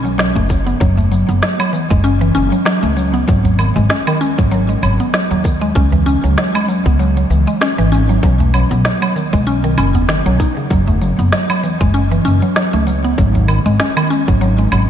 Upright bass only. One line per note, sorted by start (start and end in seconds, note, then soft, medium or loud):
0.00 0.30 B1 medium
0.36 0.76 F#1 medium
0.81 1.22 F#1 loud
1.29 1.39 F#1 medium
1.91 2.30 F#1 loud
2.35 2.48 F#1 medium
2.83 3.23 C#2 loud
3.28 3.70 G#1 loud
3.76 3.87 G#1 loud
4.38 4.78 G#1 loud
4.83 4.96 G#1 medium
5.31 5.70 D#2 medium
5.76 6.17 C#2 loud
6.24 6.34 C#2 loud
6.86 7.25 C#2 loud
7.30 7.43 C#2 medium
7.78 8.18 G#1 medium
8.23 8.65 B1 loud
8.71 8.81 B1 loud
9.33 9.72 B1 loud
9.78 10.19 F#1 medium
10.26 10.36 B1 medium
10.71 11.12 F#1 loud
11.19 11.29 F#1 loud
11.81 12.20 F#1 loud
12.25 12.38 F#1 loud
12.73 13.13 C#2 medium
13.18 13.60 G#1 loud
13.66 13.76 G#1 loud
14.28 14.67 G#1 loud
14.72 14.86 G#1 loud